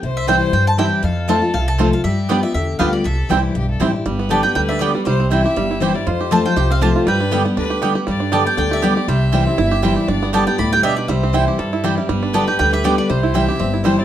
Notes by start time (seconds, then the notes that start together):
0.03 C2 C3 C5
0.17 E5
0.27 E3 G3 C4 E4 C5 G5
0.53 G2 G5
0.67 A5
0.77 E3 G3 C4 E4 G4 C5 G5
1.03 F2 A4 F5
1.28 F3 A3 C4 F4 C5 A5
1.42 C4 F4
1.54 C2 C3 F5
1.68 A5
1.78 F3 A3 C4 F4 C5 A5
1.92 C4 F4 F5
2.04 G2 G3 G4 E5
2.29 G3 B3 D4 F4 B4 D5 G5
2.43 B3 F4 E5
2.54 E2 D3 E5
2.79 D2 G3 B3 D4 F4 G4 B4 F5 G5
2.93 D5
3.04 C2 C3 A4 E5
3.29 C2 E3 G3 C4 E4 G4 C5 G5
3.55 B1 G2 G4
3.70 A4
3.80 A1 E3 G3 C4 E4 G4 C5 G5
3.93 C4 E4
4.06 G1 G2 G3 B4
4.19 B3
4.29 D3 G3 B3 D4 G4 D5 G5 A5
4.43 B3 G4 G5
4.55 D2 D3 G3 G5
4.69 D4 E5
4.79 D3 G3 B3 G4 D5 G5
4.95 G3 B3 G4
5.05 C2 C3 G3 C5
5.20 C4
5.30 E3 G3 C4 E4 C5 E5 G5
5.44 C4 E4 G4
5.56 G1 G2 G3
5.71 E4
5.80 E3 G3 C4 E4 G4 C5 G5
5.95 G3 C4 E4 D5
6.07 F2 F4 C5
6.21 G4
6.31 F3 A3 C4 F4 C5 A5
6.45 C4 F4 G5
6.56 C2 C3 G4 G5
6.71 C4 F5
6.81 F3 A3 C4 F4 G4 C5 A5
6.96 F4
7.06 G2 G3 B4 G5
7.20 D4
7.31 D3 G3 B3 G4 D5 G5
7.45 B3 G4
7.57 D2 D3 D4 B4
7.70 G4
7.82 D3 G3 B3 G4 D5 G5
7.95 B3 G4
8.07 G2 G3 D5
8.20 D4
8.32 D3 G3 B3 G4 D5 G5 A5
8.46 B3 G5
8.57 D2 D3 D4 G5
8.71 G4 E5
8.82 D3 G3 B3 G4 D5 G5
8.96 B3 G4
9.08 C2 C3 G3 C5 E5
9.32 E3 G3 C4 E4 C5 G5
9.46 C4 E4
9.58 G1 G2 E4
9.71 G4
9.82 E3 G3 C4 E4 C5 G5
9.96 G4
10.08 G1 G2 D4 D5
10.23 B3
10.33 D3 G3 B3 G4 D5 G5 A5
10.47 B3 G4 G5
10.58 D2 A2 G4 B5
10.73 G3 G5
10.83 B2 B3 D4 G4 B4 D5 E5 G5
10.97 G4 D5
11.08 C2 C3 G3 C5 E5
11.23 C4
11.33 E3 G3 C4 E4 C5 G5
11.48 G4
11.58 G2 G3 A4
11.73 E4
11.84 E3 G3 C4 E4 G4 C5 G5
11.97 G3 C4 E4
12.09 G1 G2 G3 B4
12.23 D4
12.33 D3 G3 B3 G4 D5 G5 A5
12.48 B3 G4 G5
12.59 D2 D3 G3 G5
12.73 G4 E5
12.84 D3 G3 B3 D4 G4 D5 G5
12.98 G4 D5
13.10 C2 C3 G3 C5
13.23 E4
13.34 E3 G3 C4 E4 C5 E5 G5
13.48 C4 E4 G4
13.59 G1 G2 C4
13.74 E4
13.84 E3 G3 C4 E4 C5 G5
13.97 C4 E4 D5